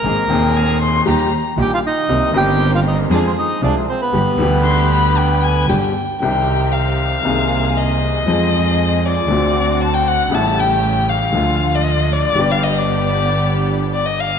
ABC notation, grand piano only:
X:1
M:4/4
L:1/8
Q:1/4=116
K:Cm
V:1 name="Grand piano" clef=bass
[A,,,A,,E,B,CA] [E,,,E,,E,B,CA]3 [E,,E,G,B,G] z [B,,,B,,E,G,B,G] z | [C,,C,E,B,CG] [G,,,G,,E,B,CG]3 [F,,F,A,CA] z [C,,C,F,A,CA] z | [G,,,G,,D,G,=B,G] [D,,D,G,B,G]4- [D,,D,G,B,G] [G,,,G,,D,G,B,G] z | [C,,C,E,G,CG]4 [C,,C,E,B,CA]4 |
[F,,F,A,CA]4 [D,,D,=A,C^F]4 | [=A,,,=A,,^C,G,=A,=E]4 [D,,D,F,A,F]4 | [G,,,G,,D,G,=B,G]8 |]